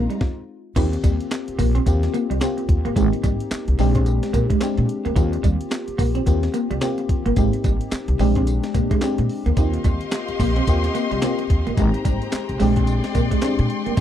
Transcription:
Already playing: G#3 C4 D#4 F4 G#4 A#4 F5 A#5
0.10 G3, closed hi-hat
0.21 kick, snare
0.76 D#2 A#3 C4 D#4 F4 G4, kick, closed hi-hat, crash, tambourine
0.93 muted clean electric guitar stroke, closed hi-hat
1.04 D#2 G3, kick, closed hi-hat, tambourine
1.21 closed hi-hat
1.31 muted clean electric guitar stroke, snare, clap, closed hi-hat, tambourine
1.48 muted upright bass stroke, closed hi-hat
1.59 A#1 A#3, kick, open hi-hat, tambourine
1.75 C4, closed hi-hat
1.86 D#2 A#3 C4 F4 G4, muted clean electric guitar stroke, kick, closed hi-hat, tambourine
2.03 snare, closed hi-hat
2.14 A#3, closed hi-hat, tambourine
2.30 C2 G3, closed hi-hat
2.41 A#3 C4 F4 G4, snare, clap, closed hi-hat, tambourine
2.57 muted clean electric guitar stroke, closed hi-hat
2.69 D#2, kick, closed hi-hat
2.85 G1 A#3, closed hi-hat
2.96 G#1 G#3 A#3 C4 D#4 G4, kick, closed hi-hat, tambourine
3.13 muted clean electric guitar stroke, closed hi-hat
3.23 G#1 G3, kick, closed hi-hat, tambourine
3.40 closed hi-hat
3.51 muted clean electric guitar stroke, muted upright bass stroke, snare, clap, closed hi-hat, tambourine
3.68 C2, closed hi-hat
3.79 A#1 G#3 C4 D4 G4, open hi-hat, tambourine
3.95 C4, kick, closed hi-hat
4.06 muted clean electric guitar stroke, closed hi-hat, tambourine
4.23 snare, closed hi-hat
4.33 A#2 A#3, kick, closed hi-hat, tambourine
4.50 G#3, kick, closed hi-hat
4.61 G#3 C4 D4 G4, snare, clap, closed hi-hat, tambourine
4.77 A#2, muted clean electric guitar stroke, closed hi-hat
4.89 closed hi-hat
5.05 D2 A#3, closed hi-hat
5.16 D#2 A#3 C4 D#4 F4 G4, kick, closed hi-hat, tambourine
5.33 muted clean electric guitar stroke, closed hi-hat
5.43 D#2 G3, kick, closed hi-hat, tambourine
5.61 closed hi-hat
5.71 muted clean electric guitar stroke, snare, clap, closed hi-hat, tambourine
5.88 muted upright bass stroke, closed hi-hat
5.98 A#1 A#3, kick, open hi-hat, tambourine
6.15 C4, closed hi-hat
6.26 D#2 A#3 C4 F4 G4, muted clean electric guitar stroke, kick, closed hi-hat, tambourine
6.43 snare, closed hi-hat
6.54 A#3, closed hi-hat, tambourine
6.71 C2 G3, closed hi-hat
6.81 A#3 C4 F4 G4, snare, clap, closed hi-hat, tambourine
6.98 muted clean electric guitar stroke, closed hi-hat
7.09 D#2, kick, closed hi-hat
7.25 G1 A#3, closed hi-hat
7.36 G#1 G#3 A#3 C4 D#4 G4, kick, closed hi-hat, tambourine
7.53 muted clean electric guitar stroke, closed hi-hat
7.64 G#1 G3, kick, closed hi-hat, tambourine
7.81 closed hi-hat
7.92 muted upright bass stroke, muted clean electric guitar stroke, snare, clap, closed hi-hat, tambourine
8.08 C2, closed hi-hat
8.19 A#1 G#3 C4 D4 G4, open hi-hat, tambourine
8.35 C4, kick, closed hi-hat
8.47 muted clean electric guitar stroke, closed hi-hat, tambourine
8.64 snare, closed hi-hat
8.74 A#2 A#3, kick, closed hi-hat, tambourine
8.91 G#3, kick, closed hi-hat
9.02 G#3 C4 D4 G4, snare, clap, closed hi-hat, tambourine
9.18 A#2, muted clean electric guitar stroke, closed hi-hat
9.29 open hi-hat
9.46 D2 A#3, closed hi-hat
9.57 D#2 A#3 C4 D#4 F4 G4 D#5 F5 C6, kick, closed hi-hat, tambourine
9.74 muted clean electric guitar stroke, closed hi-hat
9.84 D#2 G3, kick, closed hi-hat, tambourine
10.01 closed hi-hat
10.12 muted clean electric guitar stroke, snare, clap, closed hi-hat, tambourine
10.28 muted upright bass stroke, closed hi-hat
10.40 A#1 A#3, kick, open hi-hat, tambourine
10.56 C4, closed hi-hat
10.67 D#2 A#3 C4 F4 G4, muted clean electric guitar stroke, kick, closed hi-hat, tambourine
10.84 snare, closed hi-hat
10.95 A#3, closed hi-hat, tambourine
11.11 C2 G3, closed hi-hat
11.22 A#3 C4 F4 G4, snare, clap, closed hi-hat, tambourine
11.39 muted clean electric guitar stroke, closed hi-hat
11.50 D#2, kick, closed hi-hat
11.67 G1 A#3, closed hi-hat
11.77 G#1 G#3 A#3 C4 D#4 G4 C5 G5 A#5, kick, closed hi-hat, tambourine
11.94 muted clean electric guitar stroke, closed hi-hat
12.05 G#1 G3, kick, closed hi-hat, tambourine
12.22 closed hi-hat
12.32 muted clean electric guitar stroke, muted upright bass stroke, snare, clap, closed hi-hat, tambourine
12.49 C2, closed hi-hat
12.60 A#1 G#3 C4 D4 G4 D5 C6, open hi-hat, tambourine
12.76 C4, kick, closed hi-hat
12.87 muted clean electric guitar stroke, closed hi-hat, tambourine
13.04 snare, closed hi-hat
13.15 A#2 A#3, kick, closed hi-hat, tambourine
13.31 G#3, kick, closed hi-hat
13.42 G#3 C4 D4 G4, snare, clap, closed hi-hat, tambourine
13.59 A#2, muted clean electric guitar stroke, closed hi-hat
13.70 closed hi-hat
13.86 D2 A#3, closed hi-hat
13.97 D#2 D#4, kick, closed hi-hat, tambourine

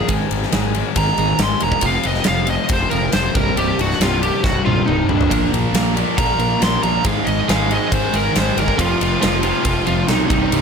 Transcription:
0.08 G#1 G#2 D#3 G#3, kick, ride
0.30 G#1 G#2 D#3, ride
0.43 snare
0.52 G#1 G#2 D#3 G#3, snare, ride
0.74 G#2 D#3 G#3, ride
0.96 G#1 G#2 D#3 G#3 A#5, kick, ride
1.18 G#1 G#2 D#3 G#3, ride
1.39 G#1 G#2 D#3, snare, ride
1.43 G#3 C6
1.60 E1 G#2 D#3 G#3 A#5, ride
1.72 kick
1.81 F1 F2 C3 F3, kick, ride
1.86 F5
2.03 F1 F2 C3 D#5, ride
2.14 snare
2.24 F2 C3 F3 F5, snare, ride
2.28 F1
2.47 F2 C3 F3 D#5, ride
2.69 F1 F2 C3 F3, kick, ride
2.73 C5
2.90 F1 F2 C3 F3 A#4, ride
3.12 F1 F2 C3 F3 C5, snare, ride
3.35 C1 C2 G2 C3 A#4, kick, ride
3.56 C1 C2 G2 C3 G4, ride
3.78 C1 C2 G2 F#4, ride
3.91 snare
4.00 C1 C2 G2 C3 F4, snare, ride
4.23 C2 G2 C3 G4, ride
4.44 C1 C2 G2 C3 F#4, kick, snare
4.65 C1 C2 G2 C3 F4, high tom
4.76 high tom
4.87 C1 C2 G2 C3 D#4, mid tom
5.09 C1 C2 G2 C3 D4, floor tom
5.21 floor tom
5.30 A#1 A#2 F3 A#3, kick, ride
5.52 A#1 A#2 F3, ride
5.73 A#1 A#2 F3 A#3, snare, ride
5.96 A#2 F3 A#3, ride
6.18 A#1 A#2 F3 A#3 A#5, kick, ride
6.38 A#1 A#2 F3 A#3, ride
6.61 A#1 A#2 F3 A#3 C6, snare, ride
6.83 A#1 A#2 F3 A#3 A#5, ride
7.04 G#1 G#2 D#3 G#3 F5, kick, ride
7.25 G#1 G#2 D#3 D#5, ride
7.48 G#1 G#2 D#3 G#3 F5, snare, ride
7.69 G#2 D#3 G#3 D#5, ride
7.91 G#1 G#2 D#3 G#3 C5, kick, ride
8.13 G#1 G#2 D#3 G#3 A#4, ride
8.34 G#1 G#2 D#3 G#3 C5, snare, ride
8.56 G1 G#2 D#3 G#3 A#4, ride
8.68 kick
8.77 F1 F2 C3 F3 F4, kick, ride
9.00 F1 F2 C3 F4, ride
9.21 F1 F2 C3 F3 F4, snare, ride
9.43 F2 C3 F3 F4, ride
9.64 F1 F2 C3 F3 F4, kick, ride
9.86 F1 F2 C3 F3 F4, ride
10.08 B1 F2 C3 F3 D#4, snare, ride
10.28 C1 C2 G2 C3 D#4, kick, ride
10.50 C1 C2 G2 C3, ride

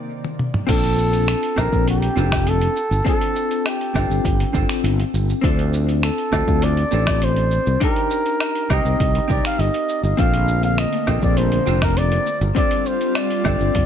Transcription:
Already playing: C3 D#3 A#3 D5
0.24 high tom
0.39 mid tom
0.54 mid tom
0.67 A#1 C4 D4 F4 A4, kick, closed hi-hat, crash, shaker
0.84 closed hi-hat
0.99 shaker
1.13 closed hi-hat, shaker
1.28 finger snap, closed hi-hat, shaker
1.43 closed hi-hat
1.56 A#1 C4 D4 F4 A4 A#4, kick, low woodblock, shaker
1.73 A#1, kick, shaker
1.88 G4, closed hi-hat, shaker
2.02 closed hi-hat
2.16 F1 C4 D4 F4 A4, shaker
2.32 finger snap, kick, closed hi-hat, low woodblock, shaker
2.47 A4, closed hi-hat, shaker
2.61 closed hi-hat
2.77 shaker
2.91 G1, shaker
3.05 C4 D4 F4 A4, kick, closed hi-hat, shaker
3.21 closed hi-hat
3.36 shaker
3.51 closed hi-hat, shaker
3.66 G4, finger snap, closed hi-hat, low woodblock, shaker
3.81 closed hi-hat
3.94 G1 C4 D4 F4 A4, kick, low woodblock, shaker
4.10 G1, shaker
4.25 G1, kick, closed hi-hat, shaker
4.40 closed hi-hat
4.53 G1 C4 D4 F4 A4, kick, shaker
4.69 finger snap, closed hi-hat, shaker
4.84 G1, closed hi-hat, shaker
4.99 closed hi-hat
5.14 G1, shaker
5.30 shaker
5.41 D2 C4 D4 F4 A4, kick, closed hi-hat, shaker
5.59 closed hi-hat
5.74 shaker
5.89 closed hi-hat, shaker
6.03 A4, finger snap, closed hi-hat, shaker
6.18 closed hi-hat
6.32 D2 C4 D4 F4 A4, kick, low woodblock, shaker
6.48 D2, kick, shaker
6.62 D5, closed hi-hat, shaker
6.77 closed hi-hat
6.91 A1 C4 D4 F4 A4, shaker
7.07 finger snap, kick, closed hi-hat, low woodblock, shaker
7.22 C5, closed hi-hat, shaker
7.36 closed hi-hat
7.51 shaker
7.66 C2, shaker
7.80 D4 D#4 G4 A#4, kick, closed hi-hat, shaker
7.96 closed hi-hat
8.11 shaker
8.26 closed hi-hat, shaker
8.40 finger snap, closed hi-hat, low woodblock, shaker
8.55 closed hi-hat
8.70 C2 C4 D#4 G4 A#4 D#5, kick, low woodblock, shaker
8.85 C2, shaker
9.00 C2, kick, closed hi-hat, shaker
9.15 closed hi-hat
9.28 C2 C4 D#4 G4 A#4 D5, kick, shaker
9.45 F5, finger snap, closed hi-hat, shaker
9.59 G1 D#5, closed hi-hat, shaker
9.74 closed hi-hat
9.89 shaker
10.03 G1 D#5, shaker
10.17 A#1 D3 A3 A#3 C4 D4 F4 A4 F5, kick, closed hi-hat, shaker
10.34 closed hi-hat
10.48 shaker
10.63 F5, closed hi-hat, shaker
10.78 D#5, finger snap, closed hi-hat, shaker
10.93 closed hi-hat
11.07 A#1 C4 D4 F4 A4, kick, low woodblock, shaker
11.22 A#1 D5, kick, shaker
11.37 C5, closed hi-hat, shaker
11.52 closed hi-hat
11.66 F1 C4 D4 F4 A4, shaker
11.82 A#4, finger snap, kick, closed hi-hat, low woodblock, shaker
11.97 D5, closed hi-hat, shaker
12.12 closed hi-hat
12.26 G3 C4 F4, shaker
12.41 G1, shaker
12.55 C4 D4 F4 A4 D5, kick, closed hi-hat, shaker
12.71 closed hi-hat
12.86 C5, shaker
13.01 closed hi-hat, shaker
13.15 D5, finger snap, closed hi-hat, low woodblock, shaker
13.30 closed hi-hat
13.44 G1 C4 D4 F4 A4, kick, low woodblock, shaker
13.60 G1, shaker
13.75 G1, kick, closed hi-hat, shaker

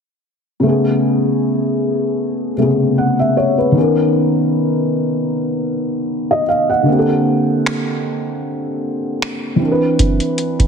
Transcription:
0.60 C#3 A3
0.66 B3 G#4
2.57 C3 A3 B3
2.61 C#3 G#4
2.98 F#5
3.19 E5
3.37 C#5
3.58 B4
3.72 D#3 B3
3.78 C#4 A#4
6.31 D#5
6.49 F5
6.69 F#5
6.83 D3 A#3
6.89 C4 G4
6.99 A4
7.66 finger snap
9.22 finger snap
9.56 E3 C4
9.62 D4 A#4
9.72 B4
9.99 kick, closed hi-hat
10.20 closed hi-hat
10.38 closed hi-hat
10.59 kick, closed hi-hat

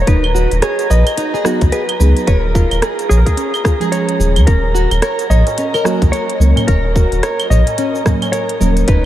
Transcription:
Already playing: A#5
0.02 C#5
0.07 D#1 D#4 B4, kick, closed hi-hat, shaker
0.24 claves
0.35 F#4, shaker
0.51 D#1, closed hi-hat, shaker
0.62 G#4 C#5, cross-stick, closed hi-hat, shaker
0.79 closed hi-hat, shaker
0.90 A#1 B4 D#5, shaker
1.07 closed hi-hat, claves, shaker
1.17 D#4, closed hi-hat, shaker
1.34 G#4, shaker
1.44 F#3 B3 D#4 F#4 G#4, cross-stick, shaker
1.61 C#2, kick, closed hi-hat, shaker
1.72 G#4 B4, closed hi-hat, shaker
1.89 closed hi-hat, claves
1.99 C#2 F#3 B3 D#4 G#4 B4, shaker
2.17 closed hi-hat, shaker
2.27 D#1 B4 C#5, kick, closed hi-hat, shaker
2.38 A#4
2.55 F4, kick, shaker
2.71 D#1, closed hi-hat, claves, shaker
2.82 G#4, cross-stick, closed hi-hat, shaker
2.99 closed hi-hat, shaker
3.09 A#1 G#4 C#5, shaker
3.17 A#4
3.26 G#4, kick, closed hi-hat, shaker
3.37 C#4, closed hi-hat, shaker
3.54 claves, shaker
3.64 F4, kick, cross-stick, shaker
3.80 F3 G#3 C#4 G#4, closed hi-hat, shaker
3.84 G#4
3.92 G#4 C#5, closed hi-hat, shaker
4.09 closed hi-hat
4.19 D#1 G#4, shaker
4.36 D#2, closed hi-hat, claves, shaker
4.47 D#1 C#4 A#4, kick, closed hi-hat, shaker
4.64 tabla tin
4.75 F#4, shaker
4.91 D#1, closed hi-hat, tabla tin, claves, shaker
5.02 A#4 C#5, cross-stick, closed hi-hat, shaker
5.19 closed hi-hat, shaker
5.30 A#1 C#5 D#5, tabla ge, shaker
5.47 closed hi-hat, tabla na, shaker
5.58 C#4, closed hi-hat, shaker
5.74 A#4, claves, shaker
5.84 F#3 A#3 C#4 F#4 A#4, cross-stick, tabla na, shaker
6.02 C#2, kick, closed hi-hat, shaker
6.12 A#4 C#5, closed hi-hat, shaker
6.30 closed hi-hat
6.39 C#2 F#3 A#3 C#4 A#4 C#5, shaker
6.56 closed hi-hat, tabla na, tabla ge, claves, shaker
6.67 D#1 A#4 C#5, kick, closed hi-hat, shaker
6.84 tabla tin
6.95 F#4, kick, shaker
7.12 D#1, closed hi-hat, tabla tin, shaker
7.23 A#4 C#5, cross-stick, closed hi-hat, shaker
7.40 closed hi-hat, claves, shaker
7.50 A#1 C#5 D#5, tabla ge, shaker
7.67 closed hi-hat, tabla na, shaker
7.78 C#4, closed hi-hat, shaker
7.94 tabla tin, shaker
8.05 F#3 A#3 C#4 A#4, kick, cross-stick, tabla na, tabla ge, shaker
8.22 closed hi-hat, tabla na, claves, shaker
8.32 A#4 C#5, closed hi-hat, shaker
8.49 closed hi-hat
8.60 D#1 F#3 A#3 C#4 A#4, shaker
8.77 closed hi-hat, shaker
8.88 D#1 D#4 B4, kick, closed hi-hat, shaker

